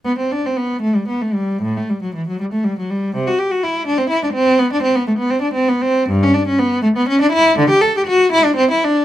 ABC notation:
X:1
M:6/8
L:1/16
Q:3/8=81
K:G
V:1 name="Cello"
B, C D C B,2 A, G, B, A, G,2 | A,, A, G, F, E, F, G, A, G, F, G,2 | C, F G F E2 D C E D C2 | B, D C B, A, B, C D C B, C2 |
[K:D] G,, C D C B,2 A, B, C D E2 | D, G A G F2 E D =C E D2 |]